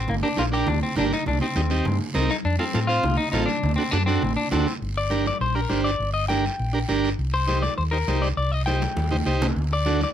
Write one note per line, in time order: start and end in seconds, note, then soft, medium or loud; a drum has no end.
0.08 0.21 G1 loud
0.08 0.14 A#3 medium
0.08 low conga medium
0.08 long guiro medium
0.23 0.28 D4 medium
0.23 0.37 D4 medium
0.23 0.28 G4 medium
0.23 0.29 A#4 medium
0.37 0.62 A#1 loud
0.37 0.43 D4 medium
0.37 0.44 F4 loud
0.37 0.43 G4 medium
0.37 0.43 A#4 medium
0.37 high conga medium
0.37 short guiro medium
0.52 0.68 D4 medium
0.52 0.68 G4 medium
0.52 0.67 G4 medium
0.52 0.68 A#4 medium
0.52 short guiro medium
0.67 0.80 D2 medium
0.67 0.82 D4 medium
0.67 low conga medium
0.67 long guiro medium
0.83 0.96 C4 medium
0.96 1.10 G1 loud
0.96 1.12 D4 medium
0.96 1.04 D4 medium
0.96 1.12 G4 medium
0.96 1.13 A#4 medium
0.96 high conga medium
0.96 low conga medium
0.96 short guiro medium
1.13 1.26 D#4 medium
1.13 short guiro medium
1.26 1.39 C2 loud
1.26 1.41 D4 medium
1.26 low conga medium
1.26 long guiro medium
1.41 1.46 C4 medium
1.41 1.97 C4 medium
1.41 1.47 D#4 medium
1.41 1.47 G4 medium
1.56 1.80 D#2 loud
1.56 1.61 C4 medium
1.56 1.61 D#4 medium
1.56 1.61 G4 medium
1.56 high conga medium
1.56 short guiro medium
1.70 1.86 C4 medium
1.70 1.86 D#4 medium
1.70 1.86 G4 medium
1.70 short guiro medium
1.85 1.98 G2 loud
1.85 low conga medium
1.85 long guiro medium
2.14 2.27 C2 medium
2.14 2.30 C4 medium
2.14 2.30 D#4 medium
2.14 2.31 A#4 loud
2.14 high conga medium
2.14 short guiro medium
2.30 2.36 D#4 medium
2.30 short guiro medium
2.45 2.57 F2 loud
2.45 2.59 D4 medium
2.45 long guiro medium
2.59 2.64 C4 medium
2.59 2.87 C4 medium
2.59 2.65 F4 medium
2.59 2.65 A4 medium
2.59 high conga medium
2.74 2.98 A2 loud
2.74 2.79 C4 medium
2.74 2.80 F4 medium
2.74 2.80 A4 medium
2.74 high conga medium
2.74 short guiro medium
2.87 3.04 C4 medium
2.87 3.16 F4 loud
2.87 3.04 F4 medium
2.87 3.05 C5 medium
2.87 short guiro medium
3.03 3.16 C2 medium
3.03 low conga medium
3.03 long guiro medium
3.17 3.31 D#4 loud
3.32 3.45 A1 medium
3.32 3.49 C4 medium
3.32 3.45 D#4 medium
3.32 3.49 F4 medium
3.32 3.49 A4 medium
3.32 high conga medium
3.32 low conga medium
3.32 short guiro medium
3.46 3.74 D4 medium
3.46 short guiro medium
3.63 3.75 D2 loud
3.63 low conga medium
3.63 long guiro medium
3.76 3.91 C4 medium
3.76 3.83 D4 medium
3.76 3.83 F#4 medium
3.76 3.83 A4 medium
3.91 4.16 F#2 loud
3.91 4.06 D4 medium
3.91 3.97 D4 medium
3.91 3.98 F#4 medium
3.91 3.98 A4 medium
3.91 high conga medium
3.91 short guiro medium
4.06 4.36 C4 medium
4.06 4.23 D4 medium
4.06 4.23 F#4 medium
4.06 4.23 A4 medium
4.06 short guiro medium
4.22 4.34 A1 loud
4.22 low conga medium
4.22 long guiro medium
4.36 4.50 D4 medium
4.51 4.64 D2 medium
4.51 4.73 C4 medium
4.51 4.67 D4 medium
4.51 4.67 F#4 medium
4.51 4.67 A4 medium
4.51 high conga medium
4.51 low conga medium
4.51 short guiro medium
4.67 short guiro medium
4.82 5.29 G1 medium
4.82 long guiro medium
4.97 5.24 D5 medium
5.10 5.26 D4 medium
5.10 5.26 G4 medium
5.10 5.26 A#4 medium
5.10 high conga medium
5.10 short guiro medium
5.26 5.40 D5 medium
5.26 high conga medium
5.26 short guiro medium
5.41 5.64 A#1 medium
5.41 5.55 C5 medium
5.41 long guiro medium
5.55 5.60 D4 medium
5.55 5.61 G4 medium
5.55 5.84 A#4 medium
5.55 5.61 A#4 medium
5.69 5.94 G1 medium
5.69 5.91 D4 medium
5.69 5.91 G4 medium
5.69 5.91 C5 medium
5.69 high conga medium
5.69 short guiro medium
5.84 6.12 D5 medium
5.84 short guiro medium
6.00 6.47 G1 medium
6.00 long guiro medium
6.14 6.28 D#5 medium
6.28 6.45 D4 medium
6.28 6.45 G4 medium
6.28 6.45 A#4 medium
6.28 6.99 G5 medium
6.28 high conga medium
6.28 short guiro medium
6.45 short guiro medium
6.59 6.83 A#1 medium
6.59 long guiro medium
6.73 6.79 D4 medium
6.73 6.79 G4 medium
6.73 6.80 A#4 medium
6.88 7.13 G1 medium
6.88 7.10 D4 medium
6.88 7.10 G4 medium
6.88 7.10 A#4 medium
6.88 high conga medium
6.88 short guiro medium
7.04 short guiro medium
7.19 7.66 C2 loud
7.19 long guiro medium
7.34 7.61 C5 medium
7.47 7.63 D#4 medium
7.47 7.64 G4 medium
7.47 7.64 C5 medium
7.47 high conga medium
7.47 short guiro medium
7.62 7.77 D5 medium
7.62 high conga medium
7.62 short guiro medium
7.78 8.02 D#2 medium
7.78 7.83 C5 medium
7.78 long guiro medium
7.91 7.98 D#4 medium
7.91 7.98 G4 medium
7.91 8.23 A#4 medium
7.91 7.98 C5 medium
8.08 8.31 C2 medium
8.08 8.29 D#4 medium
8.08 8.29 G4 medium
8.08 8.29 C5 medium
8.08 high conga medium
8.08 short guiro medium
8.22 8.27 D5 medium
8.22 short guiro medium
8.37 8.85 C2 loud
8.37 8.52 D5 medium
8.37 long guiro medium
8.52 8.66 D#5 medium
8.66 8.83 D#4 medium
8.66 8.83 G4 medium
8.66 8.83 C5 medium
8.66 9.37 G5 medium
8.66 high conga medium
8.66 short guiro medium
8.82 high conga medium
8.82 short guiro medium
8.97 9.21 D#2 medium
8.97 high conga medium
8.97 long guiro medium
9.11 9.17 D#4 medium
9.11 9.17 G4 medium
9.11 9.17 C5 medium
9.11 low conga medium
9.26 9.50 C2 medium
9.26 9.47 D#4 medium
9.26 9.47 G4 medium
9.26 9.47 C5 medium
9.26 short guiro medium
9.42 low conga medium
9.42 short guiro medium
9.56 10.04 D2 medium
9.56 long guiro medium
9.73 10.00 D5 medium
9.86 10.01 D4 medium
9.86 10.02 F#4 medium
9.86 10.02 A4 medium
9.86 high conga medium
9.86 short guiro medium
10.01 10.09 D5 medium
10.01 high conga medium
10.01 short guiro medium